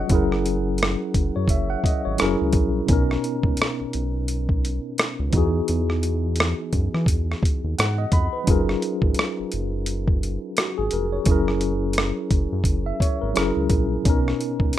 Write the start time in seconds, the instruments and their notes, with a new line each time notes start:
Already playing: tine electric piano F#3 C#4 D#4 F4 G#4 C#5 D#5 F#5
0.08 analog synth bass F#1, tine electric piano F#3 C#4 E4, kick, closed hi-hat
0.13 tine electric piano G#4 A#4
0.32 cross-stick
0.46 closed hi-hat
0.78 closed hi-hat
0.83 cross-stick
1.14 analog synth bass F#1, kick, closed hi-hat
1.36 analog synth bass F#2, tine electric piano C#5
1.48 analog synth bass F#1, tine electric piano E5, kick, closed hi-hat
1.70 tine electric piano F#5
1.84 tine electric piano D#5, kick, closed hi-hat
2.05 analog synth bass G#1, tine electric piano C#5
2.18 analog synth bass F#1, tine electric piano F#3 C#4 E4 G#4 A#4, cross-stick, closed hi-hat
2.41 analog synth bass C#2
2.53 analog synth bass A#1, kick, closed hi-hat
2.86 tine electric piano B2 B3 C#4, kick, closed hi-hat
2.90 analog synth bass B1, tine electric piano D#4 A#4
3.11 cross-stick
3.24 closed hi-hat
3.43 analog synth bass C#2, kick
3.57 closed hi-hat
3.62 cross-stick
3.81 analog synth bass B1
3.93 analog synth bass B1, closed hi-hat
4.28 closed hi-hat
4.49 kick
4.65 closed hi-hat
4.98 cross-stick, closed hi-hat
5.20 analog synth bass C#2
5.30 analog synth bass E2, tine electric piano E3 B3 D#4, kick, closed hi-hat
5.36 tine electric piano F#4 G#4
5.68 analog synth bass E2, closed hi-hat
5.90 cross-stick
6.03 closed hi-hat
6.36 closed hi-hat
6.40 cross-stick
6.73 analog synth bass F#2, kick, closed hi-hat
6.94 analog synth bass E3, cross-stick
7.06 analog synth bass E2, kick, closed hi-hat
7.32 cross-stick
7.43 kick, closed hi-hat
7.64 analog synth bass D#2
7.78 analog synth bass G#2, tine electric piano F#5, cross-stick, closed hi-hat
7.98 tine electric piano D#5
8.12 analog synth bass F2, tine electric piano B5, kick, closed hi-hat
8.33 tine electric piano B4
8.44 tine electric piano F#3 C#4 D#4, kick, closed hi-hat
8.48 analog synth bass F#1, tine electric piano F4 G#4 A#4
8.69 cross-stick
8.82 closed hi-hat
9.02 analog synth bass G#1, kick
9.14 closed hi-hat
9.19 cross-stick
9.39 analog synth bass F#1
9.52 analog synth bass F#1, closed hi-hat
9.86 closed hi-hat
10.08 kick
10.23 closed hi-hat
10.57 tine electric piano F#4, cross-stick, closed hi-hat
10.78 analog synth bass G#1, tine electric piano G#4
10.91 analog synth bass F1, tine electric piano A#4, closed hi-hat
11.12 tine electric piano C#5
11.24 analog synth bass F#1, tine electric piano F#3 C#4 E4, kick, closed hi-hat
11.30 tine electric piano G#4 A#4
11.48 cross-stick
11.61 closed hi-hat
11.93 closed hi-hat
11.98 cross-stick
12.31 analog synth bass F#1, kick, closed hi-hat
12.53 analog synth bass F#2
12.64 analog synth bass F#1, kick, closed hi-hat
12.86 tine electric piano E5
13.00 tine electric piano C#5, kick, closed hi-hat
13.21 analog synth bass G#1, tine electric piano A#4
13.34 analog synth bass F#1, tine electric piano F#3 C#4 E4 G#4 A#4, cross-stick, closed hi-hat
13.57 analog synth bass C#2
13.70 analog synth bass A#1, kick, closed hi-hat
14.02 analog synth bass B1, tine electric piano B2 B3 C#4, kick, closed hi-hat
14.08 tine electric piano D#4 A#4
14.28 cross-stick
14.41 closed hi-hat
14.60 analog synth bass C#2, kick
14.73 closed hi-hat